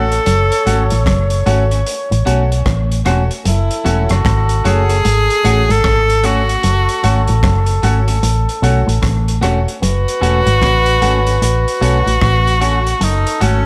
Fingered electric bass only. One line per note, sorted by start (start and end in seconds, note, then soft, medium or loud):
0.00 0.18 A1 medium
0.27 0.49 F#1 loud
0.67 0.89 G#1 medium
0.92 1.05 A1 medium
1.06 1.42 F#1 loud
1.47 1.82 G#1 medium
2.12 2.25 A1 medium
2.27 2.62 B1 loud
2.66 3.01 A1 loud
3.06 3.28 E1 medium
3.46 3.68 F#1 medium
3.86 4.08 E1 loud
4.11 4.24 F#1 loud
4.25 4.60 G#1 loud
4.65 5.00 F#1 loud
5.05 5.27 G#1 medium
5.45 5.67 A1 loud
5.70 5.83 G#1 medium
5.85 6.55 G#1 medium
6.64 6.86 F#1 medium
7.04 7.26 G#1 medium
7.29 7.42 A1 loud
7.43 7.79 F#1 loud
7.83 8.19 G#1 loud
8.23 8.45 A1 loud
8.63 8.85 B1 loud
8.88 9.01 A1 medium
9.03 9.38 A1 loud
9.42 9.65 E1 loud
9.82 10.04 F#1 loud
10.22 10.44 E1 medium
10.47 10.60 G#1 medium
10.62 10.98 A1 loud
11.02 11.37 G#1 medium
11.42 11.64 A1 medium
11.81 12.04 B1 loud
12.06 12.20 A1 medium
12.22 12.93 A1 loud
13.01 13.24 F#1 loud
13.42 13.64 G#1 medium